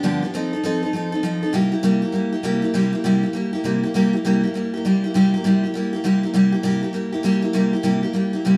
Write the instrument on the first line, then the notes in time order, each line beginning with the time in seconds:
steel-string acoustic guitar
0.03 G2 D3 F3 B3 D4 G4
0.22 F3 B3 D4 G4
0.34 F3 C4 D#4 A4
0.53 C4 D#4 A4
0.63 F3 C4 D#4 A4
0.83 C4 D#4 A4
0.93 F3 C4 D#4 A4
1.12 C4 D#4 A4
1.23 F3 C4 D#4 A4
1.43 C4 D#4 A4
1.53 C3 G3 A#3 E4 G4
1.72 A#3 E4 G4
1.83 C3 G3 A#3 E4 G4
2.02 A#3 E4 G4
2.12 G3 A#3 E4 G4
2.32 A#3 E4 G4
2.43 C3 G3 A#3 E4 G4
2.62 A#3 E4 G4
2.74 C3 G3 A#3 E4 G4
2.93 A#3 E4 G4
3.04 C3 G3 A#3 E4 G4
3.23 A#3 E4 G4
3.33 G3 A#3 E4 G4
3.53 A#3 E4 G4
3.64 C3 G3 A#3 E4 G4
3.83 A#3 E4 G4
3.94 C3 G3 A#3 E4 G4
4.13 A#3 E4 G4
4.25 C3 G3 A#3 E4 G4
4.43 A#3 E4 G4
4.54 G3 A#3 E4 G4
4.74 A#3 E4 G4
4.85 C3 G3 A#3 E4 G4
5.04 A#3 E4 G4
5.14 C3 G3 A#3 E4 G4
5.34 A#3 E4 G4
5.44 C3 G3 A#3 E4 G4
5.63 A#3 E4 G4
5.74 G3 A#3 E4 G4
5.93 A#3 E4 G4
6.04 C3 G3 A#3 E4 G4
6.23 A#3 E4 G4
6.34 C3 G3 A#3 E4 G4
6.52 A#3 E4 G4
6.63 C3 G3 A#3 E4 G4
6.83 A#3 E4 G4
6.93 G3 A#3 E4 G4
7.12 A#3 E4 G4
7.23 C3 G3 A#3 E4 G4
7.42 A#3 E4 G4
7.53 C3 G3 A#3 E4 G4
7.73 A#3 E4 G4
7.83 C3 G3 A#3 E4 G4
8.03 A#3 E4 G4
8.13 G3 A#3 E4 G4
8.33 A#3 E4 G4
8.45 C3 G3 A#3 E4 G4